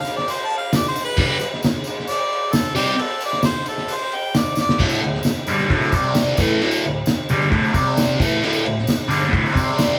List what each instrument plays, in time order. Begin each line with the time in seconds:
0.00 harmonica F5
0.05 tambourine, crash
0.17 harmonica D5, snare
0.28 harmonica C5, tambourine, crash
0.46 harmonica A5
0.50 crash
0.58 harmonica F5
0.73 harmonica D5, snare, tambourine, crash
0.88 harmonica C5
0.95 tambourine, crash
1.05 harmonica B4
1.17 overdriven electric guitar G2 D3 G3, kick, tambourine, crash
1.40 tambourine, crash
1.54 snare
1.63 snare, tambourine, crash
1.84 tambourine, crash
2.00 snare
2.07 harmonica D5, tambourine, crash
2.33 crash
2.53 harmonica A4, snare, tambourine, crash
2.75 overdriven electric guitar C3 G3 C4, harmonica G4, tambourine, crash
2.99 harmonica A4, tambourine, crash
3.21 tambourine, crash
3.25 harmonica D5
3.33 snare
3.43 harmonica C5, snare, tambourine, crash
3.66 harmonica A4, tambourine, crash
3.78 snare
3.88 tambourine, crash
3.94 harmonica C5
4.12 harmonica G5, tambourine, crash
4.35 harmonica D5, snare, tambourine, crash
4.55 snare, tambourine
4.60 harmonica D5
4.69 snare
4.78 overdriven electric guitar D2 A2 D3, kick, crash, tambourine
4.89 tambourine
5.01 overdriven electric guitar D2 A2, crash
5.15 snare
5.23 snare, tambourine, crash
5.47 overdriven electric guitar G2 D3 G3, tambourine, crash
5.58 snare, tambourine
5.70 overdriven electric guitar D2 A2 D3, kick, crash
5.82 tambourine
5.92 overdriven electric guitar C3 G3 C4, kick, tambourine, crash
6.04 tambourine
6.15 snare, tambourine, crash
6.27 tambourine
6.37 overdriven electric guitar A2 E3 A3, kick, tambourine, crash
6.49 tambourine
6.61 overdriven electric guitar D2 A2 D3, tambourine, crash
6.71 tambourine
6.84 overdriven electric guitar D2 A2, crash
7.06 snare, tambourine, crash
7.29 overdriven electric guitar G2 D3 G3, tambourine, crash
7.41 snare, tambourine
7.50 overdriven electric guitar D2 A2 D3, kick, crash
7.64 tambourine
7.73 overdriven electric guitar C3 G3 C4, kick, tambourine, crash
7.97 snare, tambourine, crash
8.09 tambourine
8.19 overdriven electric guitar A2 E3 A3, kick, tambourine, crash
8.31 tambourine
8.42 overdriven electric guitar D2 A2 D3, tambourine, crash
8.53 tambourine
8.65 overdriven electric guitar D2 A2, crash
8.79 snare
8.87 snare, tambourine, crash
9.08 overdriven electric guitar G2 D3 G3, tambourine, crash
9.23 snare, tambourine
9.29 overdriven electric guitar D2 A2 D3, kick
9.34 crash
9.46 tambourine
9.51 overdriven electric guitar C3 G3 C4
9.55 kick, tambourine, crash
9.78 snare, tambourine, crash